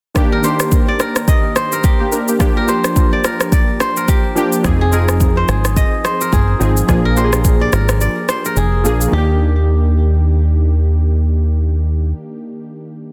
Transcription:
0.15 0.39 D#3 medium
0.15 0.39 A#3 medium
0.15 0.40 D4 medium
0.15 0.40 G4 medium
0.15 kick loud
0.15 cross-stick medium
0.15 shaker medium
0.32 1.00 A#4 medium
0.43 1.36 D#3 medium
0.43 1.36 A#3 medium
0.43 1.36 D4 medium
0.43 1.37 G4 medium
0.43 1.56 C5 medium
0.43 shaker medium
0.60 cross-stick medium
0.60 shaker medium
0.72 kick medium
0.72 shaker medium
0.88 1.34 D5 medium
1.00 1.72 A#4 medium
1.00 cross-stick medium
1.00 shaker soft
1.16 cross-stick medium
1.16 shaker medium
1.28 2.36 D#5 medium
1.28 kick loud
1.28 shaker medium
1.56 2.68 C5 medium
1.56 cross-stick medium
1.56 shaker medium
1.72 2.56 A#4 medium
1.72 shaker medium
1.84 3.26 G4 medium
1.84 kick medium
1.84 shaker medium
2.00 2.12 A#3 medium
2.00 2.11 G4 medium
2.12 2.28 D4 medium
2.12 2.27 A#4 medium
2.12 shaker medium
2.28 2.39 A#3 medium
2.28 2.40 G4 medium
2.28 shaker medium
2.39 2.63 F3 medium
2.39 2.64 A#3 medium
2.39 2.64 D4 medium
2.39 2.64 G4 medium
2.39 kick loud
2.39 cross-stick medium
2.39 shaker medium
2.57 3.24 A#4 medium
2.67 3.60 F3 medium
2.67 3.60 A#3 medium
2.67 3.61 D4 medium
2.67 3.61 G4 medium
2.67 3.80 C5 medium
2.67 shaker soft
2.84 cross-stick medium
2.84 shaker medium
2.96 kick medium
2.96 shaker medium
3.13 3.52 D5 medium
3.24 3.97 A#4 medium
3.24 cross-stick medium
3.24 shaker soft
3.40 cross-stick medium
3.40 shaker medium
3.52 4.64 D5 medium
3.52 kick loud
3.52 shaker medium
3.80 4.99 C5 medium
3.80 cross-stick medium
3.80 shaker soft
3.97 4.92 A#4 medium
3.97 shaker medium
4.08 4.87 G4 medium
4.08 kick medium
4.08 shaker medium
4.35 4.59 F3 medium
4.35 4.60 A#3 medium
4.35 4.60 D4 medium
4.35 4.61 G4 medium
4.35 shaker medium
4.53 shaker medium
4.63 5.44 F1 loud
4.63 4.87 F3 medium
4.63 4.88 C4 medium
4.63 4.88 D#4 medium
4.63 4.89 G#4 medium
4.63 kick loud
4.63 cross-stick medium
4.63 shaker medium
4.81 5.49 G#4 medium
4.91 5.84 F3 medium
4.91 5.85 C4 medium
4.91 5.85 D#4 medium
4.91 5.86 G#4 medium
4.91 6.20 A#4 medium
4.91 shaker medium
5.08 cross-stick medium
5.08 shaker medium
5.20 kick medium
5.20 shaker medium
5.37 6.04 C5 medium
5.48 5.84 G#1 medium
5.48 6.33 G#4 medium
5.48 cross-stick medium
5.48 shaker soft
5.65 cross-stick medium
5.65 shaker medium
5.76 6.84 D#5 medium
5.76 kick loud
5.76 shaker medium
6.05 7.17 C5 medium
6.05 cross-stick medium
6.05 shaker soft
6.21 7.05 A#4 medium
6.21 shaker medium
6.33 6.55 G1 loud
6.33 7.69 G#4 medium
6.33 kick medium
6.33 shaker medium
6.59 6.83 G#1 medium
6.59 6.84 F3 medium
6.59 6.84 C4 medium
6.59 6.84 D#4 medium
6.59 6.85 G#4 medium
6.59 shaker medium
6.77 shaker medium
6.87 7.69 A#1 medium
6.87 7.12 F3 medium
6.87 7.12 A#3 medium
6.87 7.12 D4 medium
6.87 7.13 G#4 medium
6.87 kick loud
6.87 cross-stick medium
6.87 shaker medium
7.05 7.73 A#4 medium
7.15 8.08 F3 medium
7.15 8.09 A#3 medium
7.15 8.09 D4 medium
7.15 7.25 G4 medium
7.15 8.29 C5 medium
7.15 shaker medium
7.24 8.13 G#4 medium
7.33 cross-stick medium
7.33 shaker medium
7.45 kick medium
7.45 shaker medium
7.61 8.01 D5 medium
7.73 8.08 G#1 loud
7.73 8.45 A#4 medium
7.73 cross-stick medium
7.73 shaker soft
7.89 cross-stick loud
7.89 shaker medium
8.01 9.12 D5 medium
8.01 shaker medium
8.29 9.48 C5 medium
8.29 cross-stick medium
8.29 shaker medium
8.45 9.73 A#4 medium
8.45 shaker medium
8.57 8.86 F1 medium
8.57 9.19 G#4 medium
8.57 shaker medium
8.84 9.07 A#1 medium
8.84 9.08 F3 medium
8.84 9.08 A#3 medium
8.84 9.09 D4 medium
8.84 9.09 G#4 medium
8.84 shaker medium
9.01 shaker medium
9.08 12.09 D#3 medium
9.08 12.13 A#3 medium
9.13 12.13 D#2 loud
9.13 12.16 D4 medium
9.13 10.77 G4 medium
9.18 12.19 G4 medium

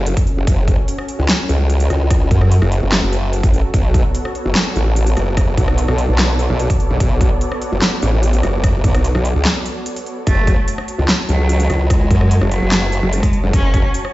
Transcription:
0.00 0.15 F#1 loud
0.00 3.70 C#4 medium
0.00 10.23 F#4 medium
0.00 10.23 A4 medium
0.06 closed hi-hat medium
0.17 kick loud
0.17 closed hi-hat medium
0.27 closed hi-hat soft
0.37 0.46 F#1 loud
0.47 0.76 F#1 loud
0.47 kick loud
0.47 closed hi-hat medium
0.68 kick loud
0.68 closed hi-hat medium
0.88 closed hi-hat medium
0.98 cross-stick medium
1.09 closed hi-hat medium
1.19 1.27 C#2 loud
1.29 snare loud
1.29 clap medium
1.29 closed hi-hat medium
1.49 1.89 C#2 loud
1.49 closed hi-hat medium
1.70 closed hi-hat medium
1.80 closed hi-hat medium
1.90 2.29 C#2 loud
1.90 cross-stick medium
1.90 closed hi-hat soft
2.11 kick loud
2.11 cross-stick medium
2.11 closed hi-hat medium
2.31 2.60 F#2 loud
2.31 kick loud
2.31 closed hi-hat soft
2.41 cross-stick medium
2.51 closed hi-hat medium
2.62 2.81 F#1 loud
2.62 cross-stick medium
2.72 closed hi-hat medium
2.82 3.01 F#1 loud
2.92 snare loud
2.92 clap medium
2.92 closed hi-hat medium
3.03 3.42 F#1 loud
3.13 closed hi-hat medium
3.33 closed hi-hat medium
3.43 3.62 A1 loud
3.43 kick loud
3.43 closed hi-hat medium
3.53 closed hi-hat soft
3.74 4.03 B1 loud
3.74 10.23 B3 medium
3.74 10.23 C#5 medium
3.74 10.23 D5 medium
3.74 kick loud
3.74 closed hi-hat medium
3.94 kick loud
3.94 closed hi-hat medium
4.15 closed hi-hat medium
4.25 cross-stick medium
4.35 closed hi-hat medium
4.45 4.54 F#1 loud
4.55 snare loud
4.55 clap medium
4.55 closed hi-hat medium
4.76 5.15 A1 loud
4.76 closed hi-hat medium
4.96 closed hi-hat medium
5.07 closed hi-hat medium
5.17 5.56 F#1 medium
5.17 cross-stick medium
5.17 closed hi-hat soft
5.37 kick loud
5.37 cross-stick medium
5.37 closed hi-hat medium
5.57 5.87 B1 loud
5.57 kick loud
5.57 closed hi-hat medium
5.68 cross-stick medium
5.78 closed hi-hat medium
5.88 6.07 B1 loud
5.88 cross-stick medium
5.98 closed hi-hat medium
6.09 6.48 B1 loud
6.19 snare loud
6.19 clap medium
6.19 closed hi-hat medium
6.39 closed hi-hat medium
6.50 6.68 B1 loud
6.60 closed hi-hat medium
6.70 kick loud
6.70 closed hi-hat medium
6.80 closed hi-hat soft
6.90 6.99 B1 loud
7.00 7.30 B1 loud
7.00 kick loud
7.00 closed hi-hat medium
7.21 kick loud
7.21 closed hi-hat medium
7.41 closed hi-hat medium
7.52 cross-stick medium
7.62 closed hi-hat medium
7.72 7.80 F#1 loud
7.82 snare loud
7.82 clap medium
7.82 closed hi-hat medium
8.02 8.42 A1 loud
8.02 closed hi-hat medium
8.23 closed hi-hat medium
8.33 closed hi-hat medium
8.43 8.82 F#1 loud
8.43 cross-stick medium
8.43 closed hi-hat soft
8.64 kick loud
8.64 cross-stick medium
8.64 closed hi-hat medium
8.84 9.13 B1 loud
8.84 kick loud
8.84 closed hi-hat medium
8.94 cross-stick medium
8.94 closed hi-hat soft
9.04 closed hi-hat medium
9.15 9.34 B1 loud
9.15 cross-stick medium
9.25 closed hi-hat medium
9.35 9.45 C#2 loud
9.45 snare loud
9.45 clap medium
9.45 closed hi-hat medium
9.66 closed hi-hat medium
9.86 closed hi-hat medium
9.96 closed hi-hat medium
10.06 closed hi-hat soft
10.27 10.56 F#1 loud
10.27 10.60 A3 loud
10.27 14.13 F#4 medium
10.27 14.13 C#5 loud
10.27 14.13 A5 medium
10.27 kick loud
10.27 closed hi-hat medium
10.47 kick loud
10.47 closed hi-hat medium
10.68 closed hi-hat medium
10.78 cross-stick medium
10.88 closed hi-hat medium
10.99 11.07 C#2 loud
11.09 snare loud
11.09 clap medium
11.09 closed hi-hat medium
11.29 11.68 C#2 loud
11.29 11.82 F#3 loud
11.29 closed hi-hat medium
11.49 closed hi-hat medium
11.60 closed hi-hat medium
11.70 12.09 C#2 loud
11.70 cross-stick medium
11.70 closed hi-hat soft
11.90 12.43 G#3 loud
11.90 kick loud
11.90 cross-stick medium
11.90 closed hi-hat medium
12.11 12.40 F#2 loud
12.11 kick loud
12.11 closed hi-hat medium
12.21 cross-stick medium
12.31 closed hi-hat medium
12.41 12.60 F#1 loud
12.41 cross-stick medium
12.51 13.05 F#3 loud
12.51 closed hi-hat medium
12.62 13.01 F#1 loud
12.72 snare loud
12.72 clap loud
12.72 closed hi-hat medium
12.92 closed hi-hat medium
13.03 13.21 F#1 loud
13.13 13.45 G#3 medium
13.13 closed hi-hat medium
13.23 kick loud
13.23 closed hi-hat medium
13.33 closed hi-hat soft
13.43 13.52 F#1 loud
13.53 13.83 F#1 loud
13.53 13.86 C#4 loud
13.53 kick loud
13.53 closed hi-hat medium
13.74 kick loud
13.74 closed hi-hat medium
13.94 closed hi-hat medium
14.05 cross-stick medium

